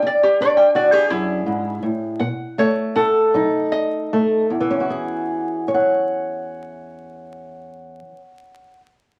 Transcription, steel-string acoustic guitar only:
0.03 0.68 E2 medium
0.41 2.17 D4 medium
0.75 0.92 F#4 medium
0.92 2.20 G#4 medium
1.11 1.46 F#2 medium
1.46 1.82 G#2 medium
1.83 2.20 A2 medium
2.20 2.88 B2 medium
2.58 4.11 A3 medium
2.96 4.45 A4 medium
3.34 4.03 F#3 medium
3.34 4.46 D#4 medium
4.13 4.51 A3 medium
4.50 8.00 E2 medium
4.60 8.10 E3 medium
4.70 8.20 C#4 medium
4.80 5.68 F#4 medium
4.90 5.74 G#4 medium
5.68 8.73 C#5 medium
5.74 8.79 F#5 medium

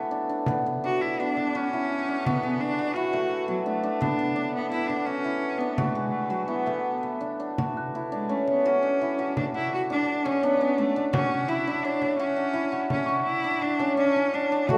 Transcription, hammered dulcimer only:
0.00 2.49 A3 medium
0.00 0.48 B3 medium
0.00 0.11 D4 medium
0.00 1.73 E4 medium
0.00 1.54 F#4 medium
0.11 0.29 D4 medium
0.29 0.83 D4 medium
0.48 0.66 B3 medium
0.66 1.19 B3 medium
0.84 2.08 D4 medium
1.20 3.48 B3 medium
1.55 2.26 F#4 medium
1.73 2.96 E4 medium
2.09 3.65 D4 medium
2.27 2.78 F#4 medium
2.43 3.19 G#4 medium
2.79 5.06 F#4 medium
2.96 5.24 E4 medium
3.13 6.01 A3 medium
3.48 4.00 B3 medium
3.66 3.83 D4 medium
3.83 4.35 D4 medium
4.01 4.18 B3 medium
4.19 4.71 B3 medium
4.36 5.60 D4 medium
4.72 7.03 B3 medium
5.06 5.77 F#4 medium
5.24 6.47 E4 medium
5.60 7.20 D4 medium
5.78 6.30 F#4 medium
5.95 6.72 G#4 medium
6.30 7.58 F#4 medium
6.48 7.95 E4 medium
6.66 11.10 A3 medium
7.03 11.17 B3 medium
7.21 7.39 D4 medium
7.40 8.12 D4 medium
7.58 8.65 F#4 medium
7.95 9.01 E4 medium
8.12 8.35 D4 medium
8.29 8.89 C#4 medium
8.65 9.18 F#4 medium
8.83 9.90 D4 medium
9.01 11.48 E4 medium
9.19 9.54 F#4 medium
9.54 11.13 F#4 medium
9.90 10.31 D4 medium
10.25 10.49 C#4 medium
10.43 10.67 D4 medium
10.61 10.84 C#4 medium
10.78 10.96 D4 medium
10.96 11.67 D4 medium
11.13 12.19 F#4 medium
11.48 12.53 E4 medium
11.67 11.91 D4 medium
11.85 12.42 C#5 medium
12.19 12.72 F#4 medium
12.36 13.44 D4 medium
12.53 14.78 E4 medium
12.72 13.08 F#4 medium
13.08 14.69 F#4 medium
13.44 13.86 D4 medium
13.80 14.03 C#4 medium
13.97 14.22 D4 medium
14.16 14.40 C#4 medium
14.34 14.51 D4 medium
14.52 14.78 D4 medium
14.70 14.78 F#4 medium

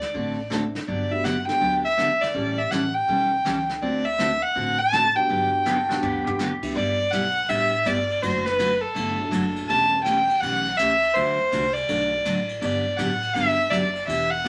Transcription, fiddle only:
0.00 0.52 D5 medium
0.88 1.13 D5 medium
1.11 1.26 E5 medium
1.24 1.46 F#5 medium
1.47 1.82 G5 loud
1.85 2.23 E5 loud
2.21 2.59 D5 medium
2.58 2.72 E5 medium
2.71 2.96 F#5 medium
2.94 3.68 G5 medium
3.82 4.07 D5 medium
4.05 4.44 E5 loud
4.43 4.80 F#5 loud
4.79 5.17 A5 loud
5.16 6.39 G5 loud
6.75 7.12 D5 medium
7.11 7.50 F#5 loud
7.49 7.87 E5 loud
7.86 8.23 D5 medium
8.22 8.47 C5 medium
8.45 8.82 B4 loud
8.81 9.55 A4 loud
9.68 10.02 A5 loud
10.04 10.42 G5 loud
10.40 10.79 F#5 loud
10.77 11.15 E5 loud
11.14 11.74 C5 medium
11.73 12.47 D5 loud
12.60 12.98 D5 medium
12.96 13.35 F#5 loud
13.33 13.72 E5 loud
13.70 14.07 D5 loud
14.07 14.31 E5 medium
14.30 14.48 F#5 loud

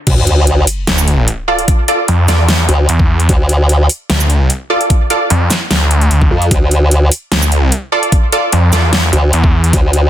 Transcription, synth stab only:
1.48 1.60 F4 medium
1.48 1.60 A4 medium
1.48 1.60 D5 medium
1.88 2.00 F4 medium
1.88 2.00 A4 medium
1.88 2.00 D5 medium
2.28 2.46 F4 medium
2.28 2.46 A4 medium
2.28 2.46 D5 medium
4.70 4.82 F4 medium
4.70 4.82 A4 medium
4.70 4.82 D5 medium
5.10 5.22 F4 medium
5.10 5.22 A4 medium
5.10 5.22 D5 medium
7.92 8.04 F4 medium
7.92 8.04 A4 medium
7.92 8.04 D5 medium
8.32 8.44 F4 medium
8.32 8.44 A4 medium
8.32 8.44 D5 medium
8.73 8.91 F4 medium
8.73 8.91 A4 medium
8.73 8.91 D5 medium

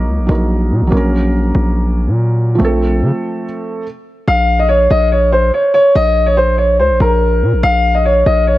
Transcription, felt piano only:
0.00 0.24 F#3 medium
0.00 0.26 A#3 medium
0.00 0.28 D#4 medium
0.00 0.29 A#4 medium
0.27 0.86 F#3 medium
0.27 0.89 A#3 soft
0.27 0.92 D#4 soft
0.31 0.93 A#4 medium
0.87 2.54 F#3 medium
0.87 2.56 A#3 medium
0.94 2.57 C#4 medium
0.94 2.59 A#4 medium
2.55 3.81 F3 medium
2.55 3.82 A3 medium
2.61 3.84 C4 medium
2.61 3.86 A4 medium

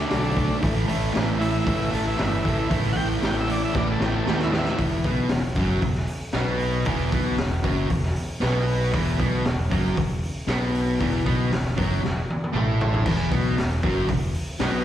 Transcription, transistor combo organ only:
0.00 0.57 A3 medium
0.00 0.59 D4 loud
1.41 1.91 E4 loud
1.95 2.06 A4 loud
2.07 2.57 E4 medium
2.59 2.71 E4 medium
2.93 2.96 F#5 medium
2.97 3.09 G5 loud
3.26 3.36 G5 loud
3.40 3.50 E5 medium
3.51 3.62 D5 loud
3.65 3.75 E5 medium
3.77 3.88 D5 loud
3.92 4.02 A4 medium
4.04 4.15 G4 loud
4.16 4.27 A4 medium
4.29 4.40 G4 medium
4.44 4.54 E4 medium
4.53 4.55 D#4 medium
4.58 4.80 E4 loud

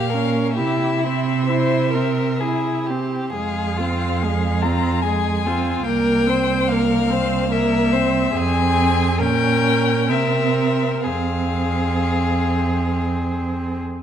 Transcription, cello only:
0.00 0.60 A#2 medium
0.59 3.14 C3 soft
3.34 5.82 F2 soft
5.86 8.32 C2 soft
8.36 9.21 F2 soft
9.20 10.11 A#2 soft
10.09 11.07 C3 soft
11.05 13.83 F2 soft

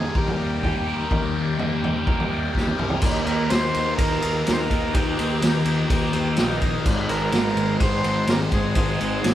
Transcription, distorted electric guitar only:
0.00 1.12 D#3 medium
0.00 0.39 G3 medium
0.00 1.59 A#3 medium
0.15 0.86 A#4 medium
0.40 1.35 G3 medium
0.64 1.83 G4 medium
0.87 2.05 A#4 medium
1.12 2.31 D#3 medium
1.36 1.82 G3 medium
1.59 2.79 A#3 medium
1.83 2.28 G3 medium
2.07 2.77 A#4 medium
2.30 3.02 G3 medium
2.54 3.02 G4 medium
2.78 3.02 A#4 medium
3.01 3.50 D#3 medium
3.01 3.28 A#3 loud
3.01 3.25 D#4 loud
3.25 3.51 A#3 medium
3.25 3.52 D#4 medium
3.50 3.96 D#3 medium
3.50 3.97 A#3 medium
3.50 3.99 D#4 medium
3.97 4.44 D#3 medium
3.97 4.22 A#3 loud
3.97 4.21 D#4 loud
4.21 4.45 A#3 medium
4.21 4.47 D#4 medium
4.45 4.92 D#3 medium
4.45 4.71 A#3 medium
4.45 4.69 D#4 medium
4.69 4.93 A#3 medium
4.69 4.95 D#4 medium
4.94 5.41 D#3 medium
4.94 5.19 A#3 loud
4.94 5.17 D#4 loud
5.17 5.42 A#3 medium
5.17 5.43 D#4 medium
5.42 5.90 D#3 medium
5.42 5.91 A#3 medium
5.42 5.92 D#4 medium
5.91 6.37 D#3 loud
5.91 6.15 A#3 loud
5.91 6.13 D#4 loud
6.13 6.38 A#3 medium
6.13 6.40 D#4 medium
6.38 6.84 D#3 medium
6.38 6.63 A#3 medium
6.38 6.61 D#4 medium
6.61 6.85 A#3 medium
6.61 9.34 D#4 medium
6.85 7.32 G#2 medium
6.85 7.09 D#3 medium
6.85 7.08 G#3 loud
7.09 7.33 D#3 medium
7.09 7.35 G#3 medium
7.33 7.79 G#2 medium
7.33 7.80 D#3 medium
7.33 7.81 G#3 medium
7.80 8.26 G#2 medium
7.80 8.04 D#3 loud
7.80 8.02 G#3 loud
8.03 8.28 D#3 medium
8.03 8.29 G#3 medium
8.28 8.74 G#2 medium
8.28 8.53 D#3 medium
8.28 8.51 G#3 medium
8.52 8.76 D#3 medium
8.52 8.77 G#3 medium
8.75 9.21 G#2 loud
8.75 9.00 D#3 loud
8.75 8.98 G#3 loud
8.99 9.22 D#3 medium
8.99 9.24 G#3 medium
9.22 9.34 G#2 medium
9.22 9.34 D#3 medium
9.22 9.34 G#3 medium

